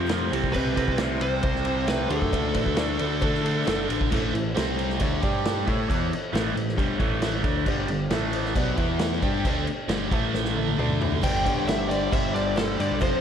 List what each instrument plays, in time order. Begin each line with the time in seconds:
Already playing: picked electric bass F2
0.06 overdriven electric guitar F2, twelve-string acoustic guitar C3 F3 A3 C4 F4, snare, ride
0.11 overdriven electric guitar C3 F3, cowbell
0.29 picked electric bass C2, twelve-string acoustic guitar C4 E4, upright piano C4 E4 G4, ride
0.33 overdriven electric guitar C3 G3 C4
0.44 kick
0.52 twelve-string acoustic guitar C3 E3 E4, lead electric guitar B4, kick, crash, cowbell
0.56 overdriven electric guitar C3 G3 C4
0.74 picked electric bass C2, overdriven electric guitar C3, upright piano C4 E4 A4, twelve-string acoustic guitar E4, kick, ride
0.78 overdriven electric guitar G3 C4
0.88 picked electric bass C2, upright piano C4 E4 G4, kick
0.98 overdriven electric guitar C3 G3 C4, twelve-string acoustic guitar E3 E4, snare, ride, cowbell
1.21 overdriven electric guitar C3 G3 C4, lead electric guitar C5, ride, cowbell
1.43 picked electric bass C2, overdriven electric guitar C3 G3 C4, twelve-string acoustic guitar E3 E4, kick, ride, cowbell
1.55 snare
1.65 overdriven electric guitar C3 G3 C4, twelve-string acoustic guitar E4, ride
1.87 overdriven electric guitar C3 G3 C4, twelve-string acoustic guitar E3 E4, lead electric guitar B4, snare, ride, cowbell
2.08 picked electric bass D2, overdriven electric guitar D3 A3 D4, upright piano D4 F#4 A4, twelve-string acoustic guitar F#4, lead electric guitar A4, ride
2.22 picked electric bass F#2, kick
2.32 picked electric bass C#2, overdriven electric guitar D3 A3 D4, twelve-string acoustic guitar F#4, kick, ride, cowbell
2.53 picked electric bass A1, overdriven electric guitar D3 A3 D4, upright piano D4 F#4 B4, twelve-string acoustic guitar F#4, kick, ride, cowbell
2.64 picked electric bass D2, upright piano D4 F#4 B4, kick
2.77 overdriven electric guitar D3 A3 D4, twelve-string acoustic guitar F#4, snare, ride, cowbell
2.96 overdriven electric guitar D3 A3, twelve-string acoustic guitar F#4, ride
3.00 picked electric bass D2, overdriven electric guitar D4, cowbell
3.21 overdriven electric guitar D3 A3 D4, picked electric bass D3, twelve-string acoustic guitar F#4, kick, ride, cowbell
3.35 snare
3.41 overdriven electric guitar D3 A3 D4, twelve-string acoustic guitar F#4, upright piano A5
3.46 ride
3.65 picked electric bass F#1, overdriven electric guitar D3 A3 D4, twelve-string acoustic guitar F#4, upright piano F#5, snare, ride, cowbell
3.87 picked electric bass A1, overdriven electric guitar D3 A3 D4, twelve-string acoustic guitar F#4, ride
4.01 kick
4.11 picked electric bass A1, overdriven electric guitar A2 E3 A3, upright piano C#4 E4 A4, kick, crash
4.33 picked electric bass A1, overdriven electric guitar A2 E3, crash
4.56 picked electric bass C2, overdriven electric guitar C3 G3 C4, upright piano C4 G4 C5, snare, crash
4.79 crash
4.90 snare
5.00 picked electric bass D2, overdriven electric guitar D3 A3 D4, upright piano E4 A4 C#5, kick, crash
5.23 picked electric bass G2, overdriven electric guitar G3 D4 G4, upright piano D4 G4 D5, kick, crash
5.45 snare, crash
5.67 picked electric bass A2, overdriven electric guitar A3 E4 A4, upright piano E4 A4 C#5, kick, crash
5.90 picked electric bass E2, overdriven electric guitar E3 B3 E4, kick, crash
6.13 crash
6.33 picked electric bass A1, overdriven electric guitar A2 E3 A3, snare, crash
6.56 picked electric bass A1, overdriven electric guitar A2 E3, crash
6.69 snare
6.77 picked electric bass G1, overdriven electric guitar G2 D3 G3, kick, crash
6.98 picked electric bass A1, overdriven electric guitar A2 E3 A3, upright piano E4 A4 C#5, kick, crash
7.22 snare, crash
7.42 picked electric bass D2, overdriven electric guitar D3 A3 D4, upright piano E4 A4 C#5, kick, crash
7.66 picked electric bass G1, overdriven electric guitar G2 D3 G3, upright piano D4 G4 D5, kick, cowbell, crash
7.87 picked electric bass G1, overdriven electric guitar G2 D3, crash
8.10 picked electric bass A1, overdriven electric guitar A2 E3 A3, upright piano E4 A4 E5, snare, cowbell, crash
8.33 cowbell, crash
8.45 snare
8.55 picked electric bass B1, overdriven electric guitar B2 F#3 B3, upright piano D4 G4 D5, kick, cowbell, crash
8.77 picked electric bass E2, overdriven electric guitar E3 B3 E4, upright piano E4 B4 E5, kick, crash
8.99 snare, cowbell, crash
9.12 snare
9.22 picked electric bass G2, overdriven electric guitar G3 D4 G4, upright piano G4 D5 G5, kick, cowbell, crash
9.45 picked electric bass D2, overdriven electric guitar D3 A3 D4, kick, cowbell, crash
9.67 crash
9.88 picked electric bass G1, overdriven electric guitar G2 D3 G3, snare, cowbell, crash
10.11 picked electric bass A1, overdriven electric guitar A2 E3 A3, upright piano A4 E5 A5, kick, cowbell, crash
10.34 snare, cowbell
10.45 snare
10.56 upright piano A4 E5 A5, high tom
10.67 high tom
10.78 picked electric bass D2, overdriven electric guitar D3 A3 D4, upright piano A4 D5 A5, mid tom, cowbell
10.89 mid tom
11.00 upright piano A4 D5 B5, floor tom, cowbell
11.12 floor tom
11.22 picked electric bass G1, overdriven electric guitar G2 D3 G3, twelve-string acoustic guitar B3 D4 G4, upright piano D4 G4 B4 D5, lead electric guitar G5, kick, crash, cowbell
11.44 picked electric bass G1, overdriven electric guitar G2 D3 G3, twelve-string acoustic guitar B3 D4 G4, upright piano D4 G4 B4 C#5, kick, cowbell, crash
11.55 picked electric bass G1, upright piano D4 G4 B4 C#5
11.67 overdriven electric guitar G2 D3 G3, twelve-string acoustic guitar B3 D4 G4, lead electric guitar E5, snare, cowbell, crash
11.89 overdriven electric guitar G2 D3 G3, twelve-string acoustic guitar B3 D4 G4, lead electric guitar D5, cowbell, crash
12.12 picked electric bass G1, overdriven electric guitar G2 D3 G3, twelve-string acoustic guitar B3 D4 G4, lead electric guitar E5, kick, cowbell, crash
12.34 overdriven electric guitar G2 D3 G3, twelve-string acoustic guitar B3 D4 G4, lead electric guitar D5, crash
12.56 overdriven electric guitar G2 D3 G3, twelve-string acoustic guitar B3 D4 G4, lead electric guitar A4, snare, cowbell, crash
12.77 overdriven electric guitar G2 D3 G3, picked electric bass G2, twelve-string acoustic guitar B3 D4 G4, lead electric guitar D5, crash
12.91 picked electric bass B1
13.00 picked electric bass F1, overdriven electric guitar F2 C3 F3, twelve-string acoustic guitar A3 C4 F4, upright piano C4 F4 A4 C5, lead electric guitar C5, kick, cowbell, crash